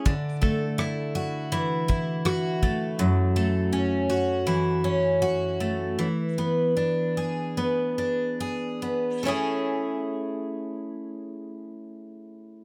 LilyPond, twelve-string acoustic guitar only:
\new Staff \with { instrumentName = "Twelve-string acoustic guitar" } { \time 4/4 \key a \major \tempo 4 = 78 d8 a8 e'8 fis'8 e8 e'8 fis'8 a8 | fis,8 a8 cis'8 fis'8 e8 cis'8 fis'8 a8 | e8 b8 d'8 gis'8 b8 d'8 gis'8 b8 | <a cis' e' gis'>1 | }